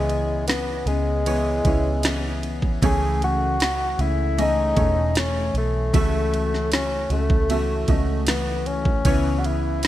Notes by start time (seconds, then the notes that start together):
Already playing: C#2 C#3 E3 G#3 B3 C#4 E4 G#4 C#5 D#5
0.10 ride
0.47 E3 B3 C#4 G#4, snare, ride
0.86 C#2 G#3 B3 C#4 G#4, ride
1.25 E3 B3 C#4 E4 G#4 C#5, ride
1.64 C#2 B3 C#4 E4 G#4 C#5, kick, ride
2.03 E3 B3 C#4 G#4, snare, ride
2.43 ride
2.62 kick
2.82 C#2 C#3 E3 A3 C#4 G#4 C#5, kick, ride
3.22 F#4, ride
3.59 E3 A3 C#4 G#4, snare, ride
3.98 C#2 A3 C#4 E4 G#4, ride
4.37 E3 A3 C#4 G#4 D#5, ride
4.42 D#4
4.76 E1 A3 C#4 G#4 C#5, kick, ride
5.15 E3 A3 C#4 G#4, snare, ride
5.54 B1 A3, ride
5.93 C#2 C#3 E3 A3 C#4 F#4 E5, kick, ride
6.34 ride
6.54 snare
6.71 E3 A3 C#4 F#4, snare, ride
7.10 C#2 A3 C#4 F#4, ride
7.30 kick
7.49 E3 A3 C#4 F#4 E5, ride
7.87 C#2 A3 C#4 F#4 D#5, kick, ride
8.26 E3 A3 B3 C#4 F#4, snare, ride
8.66 C#4, ride
8.85 kick
9.05 C#2 C#3 E3 B3 C#4 E4 G#4 C#5, kick, ride
9.39 F#4
9.44 E4, ride
9.82 E3 B3 C#4 G#4, ride